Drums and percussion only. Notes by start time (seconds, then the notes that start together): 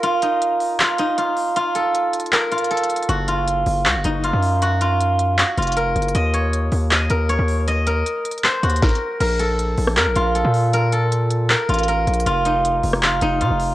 0.03 closed hi-hat
0.22 closed hi-hat
0.42 closed hi-hat
0.60 open hi-hat
0.80 clap, closed hi-hat
0.98 closed hi-hat
1.18 closed hi-hat
1.37 open hi-hat
1.56 closed hi-hat
1.75 closed hi-hat
1.95 closed hi-hat
2.13 closed hi-hat
2.20 closed hi-hat
2.26 closed hi-hat
2.33 clap, closed hi-hat
2.52 closed hi-hat
2.58 closed hi-hat
2.64 closed hi-hat
2.71 closed hi-hat
2.77 closed hi-hat
2.84 closed hi-hat
2.90 closed hi-hat, open hi-hat
2.96 closed hi-hat
3.03 closed hi-hat
3.09 closed hi-hat
3.28 closed hi-hat
3.48 closed hi-hat
3.66 open hi-hat
3.85 clap, closed hi-hat
4.04 closed hi-hat
4.24 closed hi-hat
4.43 open hi-hat
4.62 closed hi-hat
4.81 closed hi-hat
5.01 closed hi-hat
5.19 closed hi-hat
5.38 clap, closed hi-hat
5.58 closed hi-hat
5.62 closed hi-hat
5.67 closed hi-hat
5.72 closed hi-hat
5.77 closed hi-hat
5.96 closed hi-hat
6.02 closed hi-hat
6.08 closed hi-hat
6.15 closed hi-hat
6.34 closed hi-hat
6.53 closed hi-hat
6.72 open hi-hat
6.91 clap, closed hi-hat
7.10 closed hi-hat
7.29 closed hi-hat
7.48 open hi-hat
7.68 closed hi-hat
7.87 closed hi-hat
8.06 closed hi-hat
8.25 closed hi-hat
8.31 closed hi-hat
8.38 closed hi-hat
8.44 clap, closed hi-hat
8.63 closed hi-hat
8.69 closed hi-hat
8.76 closed hi-hat
8.82 kick, snare, closed hi-hat
8.89 closed hi-hat
8.95 closed hi-hat
9.20 closed hi-hat, crash
9.39 closed hi-hat
9.59 closed hi-hat
9.78 open hi-hat
9.87 cross-stick
9.97 clap, closed hi-hat
10.16 closed hi-hat
10.35 closed hi-hat
10.54 open hi-hat
10.73 closed hi-hat
10.92 closed hi-hat
11.12 closed hi-hat
11.30 closed hi-hat
11.50 clap, closed hi-hat
11.69 closed hi-hat
11.74 closed hi-hat
11.78 closed hi-hat
11.83 closed hi-hat
11.88 closed hi-hat
12.07 closed hi-hat
12.13 closed hi-hat
12.20 closed hi-hat
12.26 closed hi-hat
12.45 closed hi-hat
12.65 closed hi-hat
12.83 open hi-hat
12.93 cross-stick
13.03 clap, closed hi-hat
13.21 closed hi-hat
13.41 closed hi-hat
13.60 open hi-hat